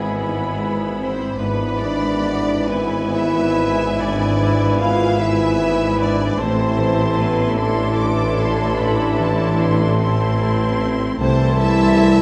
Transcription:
0.00 1.21 G#1 soft
0.00 1.35 G#1 soft
0.00 1.35 G#2 soft
0.00 1.38 G#2 soft
0.00 1.09 E3 soft
0.00 0.56 G#3 medium
0.00 1.79 G#3 soft
0.00 1.38 B3 soft
0.00 2.22 B3 soft
0.00 0.20 E4 soft
0.00 1.09 E4 medium
0.00 1.35 E4 soft
0.00 0.60 G#4 medium
0.00 0.59 B4 soft
0.00 1.09 G#5 soft
0.00 0.19 B5 soft
0.00 1.11 B5 soft
0.20 0.99 E4 soft
0.20 1.36 B5 soft
0.60 3.14 B4 soft
0.99 1.36 C4 medium
0.99 2.68 E4 soft
0.99 1.36 C5 medium
1.38 6.34 G#1 soft
1.38 6.35 G#1 soft
1.38 6.35 G#2 soft
1.38 3.98 G#2 soft
1.38 2.65 E3 soft
1.38 1.79 B3 soft
1.38 5.16 B3 soft
1.38 2.67 D4 soft
1.38 2.66 E4 soft
1.38 1.79 B4 medium
1.38 2.66 B4 soft
1.38 2.67 B5 soft
1.79 4.40 G#3 soft
1.79 2.69 D4 medium
1.79 2.69 D5 medium
2.24 4.80 B3 soft
2.68 3.96 E3 medium
2.68 3.14 B3 medium
2.68 3.57 E4 soft
2.68 6.38 E4 soft
2.68 3.97 E4 medium
2.68 3.15 B4 medium
2.68 3.96 B4 soft
2.68 5.19 G#5 medium
2.68 3.96 B5 soft
3.13 3.98 E4 medium
3.13 5.59 B4 soft
3.13 3.99 E5 medium
3.58 5.20 E4 soft
3.97 6.42 G#2 soft
3.97 5.18 E3 medium
3.97 4.79 D4 medium
3.97 5.19 E4 medium
3.97 5.18 B4 soft
3.97 4.81 D5 medium
3.97 5.18 B5 soft
4.41 6.43 G#3 soft
4.80 6.43 B3 soft
4.80 5.20 F4 medium
4.80 5.19 F5 medium
5.20 6.37 E3 soft
5.20 6.37 B3 medium
5.20 6.37 E4 medium
5.20 5.99 E4 soft
5.20 6.40 B4 medium
5.20 6.00 E5 medium
5.20 6.37 G#5 soft
5.20 6.37 B5 soft
5.60 6.42 B4 soft
6.00 6.39 D4 medium
6.00 7.57 E4 soft
6.00 6.39 D5 medium
6.39 11.04 A1 medium
6.39 11.17 A1 medium
6.39 11.17 A2 medium
6.39 8.78 A2 medium
6.39 7.56 E3 medium
6.39 7.58 A3 soft
6.39 7.16 C4 medium
6.39 8.75 E4 soft
6.39 7.56 E4 medium
6.39 7.18 C5 medium
6.39 7.57 A5 medium
6.39 7.55 C6 soft
6.39 7.56 C6 medium
6.78 9.17 E3 soft
7.18 7.58 B3 medium
7.18 9.58 C4 soft
7.18 7.58 B4 medium
7.57 10.91 E3 medium
7.57 10.41 A3 medium
7.57 9.97 D4 medium
7.57 10.91 E4 medium
7.57 8.38 E4 soft
7.57 10.38 A4 medium
7.57 10.91 A5 medium
7.57 7.97 C6 medium
7.57 10.92 C6 medium
7.98 10.40 A4 soft
7.98 8.39 D6 medium
8.39 9.99 E4 soft
8.39 8.79 C6 medium
8.78 11.24 A2 soft
8.78 9.99 E4 medium
8.78 9.19 B5 medium
9.18 11.24 E3 soft
9.18 9.59 A5 medium
9.58 11.60 C4 soft
9.58 9.98 C6 medium
9.99 11.21 C4 medium
9.99 10.80 E4 soft
9.99 11.19 E4 medium
9.99 11.18 C6 medium
10.41 12.22 A4 soft
10.81 12.22 E4 soft
11.20 12.22 C2 medium
11.20 12.22 C3 medium
11.20 12.22 E3 medium
11.20 12.22 A3 medium
11.20 11.58 C4 medium
11.20 12.22 E4 medium
11.20 11.58 C5 medium
11.20 12.22 A5 medium
11.20 12.22 C6 medium
11.60 12.22 C4 soft
11.60 12.22 E4 medium
11.60 12.22 E5 medium
12.01 12.22 A3 soft

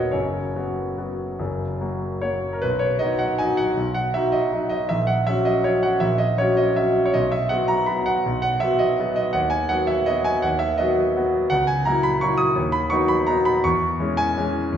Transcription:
0.00 0.17 D#1 soft
0.00 0.18 D#2 soft
0.00 0.18 F#3 soft
0.00 0.17 B3 soft
0.00 0.18 F#4 soft
0.00 0.17 B4 medium
0.00 0.11 C#5 medium
0.00 0.18 D#5 medium
0.00 0.17 F#5 medium
0.11 0.54 F#1 soft
0.11 0.54 F#2 soft
0.11 2.20 C#5 medium
0.55 0.93 F#3 soft
0.55 0.94 B3 soft
0.55 0.94 F#4 soft
0.97 1.35 F#3 soft
0.97 1.35 B3 soft
0.97 1.35 F#4 soft
1.39 1.80 F#1 soft
1.39 1.80 F#2 soft
1.80 2.19 F#3 soft
1.80 2.19 A#3 soft
1.80 2.19 F#4 soft
2.21 2.59 F#3 soft
2.21 2.59 A#3 soft
2.21 2.59 F#4 soft
2.21 2.53 C#5 medium
2.53 2.63 A#4 medium
2.62 2.99 B1 medium
2.62 2.81 B4 medium
2.79 2.99 C#5 medium
2.99 3.35 F#3 soft
2.99 3.36 D#4 soft
2.99 3.36 F#4 soft
2.99 3.19 D#5 medium
3.19 3.39 F#5 medium
3.39 3.74 F#3 soft
3.39 3.74 D#4 soft
3.39 3.74 F#4 soft
3.39 3.58 G#5 medium
3.57 3.93 F#5 medium
3.77 4.13 B1 medium
3.94 4.13 F#5 medium
4.14 4.49 F#3 soft
4.14 4.50 D#4 soft
4.14 4.50 F#4 soft
4.14 4.33 E5 medium
4.32 4.68 D#5 medium
4.53 4.87 F#3 soft
4.53 4.87 D#4 soft
4.53 4.87 F#4 soft
4.69 4.89 D#5 medium
4.89 5.27 A#1 soft
4.89 5.08 E5 medium
5.07 5.27 F#5 medium
5.27 5.62 F#3 soft
5.27 5.62 C#4 soft
5.27 5.63 F#4 soft
5.27 5.46 E5 medium
5.45 5.65 D#5 medium
5.64 5.98 F#3 soft
5.64 5.98 C#4 soft
5.64 5.99 F#4 soft
5.64 5.84 C#5 medium
5.83 6.02 F#5 medium
6.00 6.37 A#1 medium
6.00 6.19 E5 medium
6.18 6.38 D#5 medium
6.38 6.74 F#3 soft
6.38 6.74 C#4 soft
6.38 6.74 F#4 soft
6.38 6.58 C#5 medium
6.57 6.77 D#5 medium
6.76 7.11 F#3 soft
6.76 7.11 C#4 soft
6.76 7.11 F#4 soft
6.76 7.05 E5 medium
7.06 7.14 C#5 medium
7.14 7.50 B1 medium
7.14 7.32 D#5 medium
7.32 7.51 E5 medium
7.49 7.85 F#3 soft
7.49 7.85 B3 soft
7.49 7.86 F#4 soft
7.49 7.69 F#5 medium
7.68 7.88 A#5 medium
7.86 8.22 F#3 soft
7.86 8.22 B3 soft
7.86 8.22 F#4 soft
7.86 8.07 B5 medium
8.06 8.41 F#5 medium
8.26 8.61 B1 medium
8.42 8.62 F#5 medium
8.60 8.96 F#3 soft
8.60 8.96 B3 soft
8.60 8.96 F#4 soft
8.60 8.80 E5 medium
8.79 9.14 D#5 medium
8.99 9.31 F#3 soft
8.99 9.32 B3 soft
8.99 9.32 F#4 soft
9.16 9.34 D#5 medium
9.33 9.69 D#2 medium
9.33 9.51 F#5 medium
9.50 9.69 G#5 medium
9.69 10.04 F#3 soft
9.69 10.04 B3 soft
9.69 10.04 F#4 soft
9.69 9.88 F#5 medium
9.87 10.07 E5 medium
10.06 10.40 F#3 soft
10.06 10.40 B3 soft
10.06 10.40 F#4 soft
10.06 10.25 D#5 medium
10.24 10.43 G#5 medium
10.42 10.78 D#2 medium
10.42 10.60 F#5 medium
10.59 10.78 E5 medium
10.78 11.12 F#3 soft
10.78 11.12 B3 soft
10.78 11.12 F#4 soft
10.78 11.15 D#5 medium
11.16 11.47 F#3 soft
11.16 11.48 B3 soft
11.16 11.48 F#4 soft
11.50 11.85 C#2 medium
11.50 11.67 F#5 loud
11.67 11.85 G#5 medium
11.85 12.19 F#3 soft
11.85 12.19 A#3 soft
11.85 12.19 E4 medium
11.85 12.04 A#5 medium
12.03 12.22 B5 medium
12.21 12.54 F#3 soft
12.21 12.54 A#3 soft
12.21 12.54 E4 soft
12.21 12.39 C#6 loud
12.38 12.73 D#6 loud
12.56 12.90 D#2 medium
12.72 12.91 B5 medium
12.90 13.24 F#3 soft
12.90 13.24 B3 soft
12.90 13.25 D#4 medium
12.90 13.09 C#6 loud
13.08 13.27 B5 medium
13.27 13.60 F#3 soft
13.27 13.61 B3 soft
13.27 13.61 D#4 medium
13.27 13.46 A#5 medium
13.45 13.64 B5 loud
13.64 13.99 E2 medium
13.64 14.17 C#6 loud
14.00 14.33 E3 soft
14.00 14.33 G#3 soft
14.00 14.33 C#4 medium
14.17 14.77 G#5 loud
14.37 14.69 E3 soft
14.37 14.70 G#3 soft
14.37 14.70 C#4 soft
14.72 14.77 E2 medium

